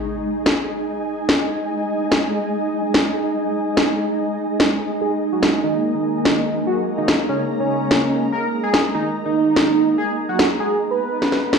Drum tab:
SD |----o-------o---|----o-------o---|----o-------o---|----o-------o---|

SD |----o-------o---|----o-------o---|----o-------oo-o|